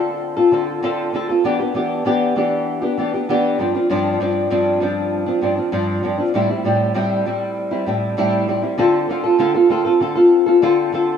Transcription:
nylon-string guitar
Already playing: D3 C4 F4 A4
0.37 C4 F4 A4
0.51 D3 C4 F4 A4
0.82 D3 C4 F4 A4
1.13 D3 C4 F4 A4
1.29 C4 F4 A4
1.44 E3 B3 D4 G4
1.59 B3 D4 G4
1.74 E3 B3 D4 G4
2.05 E3 B3 D4 G4
2.36 E3 B3 D4 G4
2.82 B3 D4 G4
2.97 E3 B3 D4 G4
3.14 B3 D4 G4
3.29 E3 B3 D4 G4
3.59 G2 F3 C4 D4
3.74 F3 C4 D4
3.90 G2 F3 C4 D4
4.20 G2 F3 C4 D4
4.50 G2 F3 C4 D4
4.80 G2 F3 C4 D4
5.26 F3 C4 D4
5.42 G2 F3 C4 D4
5.57 F3 C4 D4
5.72 G2 F3 C4 D4
6.03 G2 F3 C4 D4
6.18 F3 C4 D4
6.34 A2 G3 C4 E4
6.49 G3 C4 E4
6.64 A2 G3 C4 E4
6.94 A2 G3 C4 E4
7.25 A2 G3 C4 E4
7.71 G3 C4 E4
7.86 A2 G3 C4 E4
8.17 A2 G3 C4 E4
8.47 A2 G3 C4 E4
8.62 G3 C4 E4
8.78 D3 C4 F4 A4
9.09 D3 C4 F4 A4
9.24 C4 F4 A4
9.39 D3 C4 F4 A4
9.54 C4 F4 A4
9.69 D3 C4 F4 A4
9.85 C4 F4 A4
10.00 D3 C4 F4 A4
10.15 C4 F4 A4
10.46 C4 F4 A4
10.62 D3 C4 F4 A4
10.92 D3 C4 F4 A4

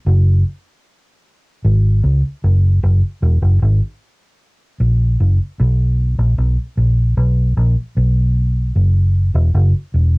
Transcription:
fingered electric bass
0.06 F#1
1.65 G#1
2.04 C#2
2.44 F#1
2.83 F#1
3.22 E1
3.42 F#1
3.62 G#1
4.80 A#1
5.20 F#1
5.60 B1
6.19 A#1
6.38 B1
6.77 A#1
7.17 B1
7.57 A#1
7.97 B1
8.75 F#1
9.34 E1
9.54 F#1
9.94 E1

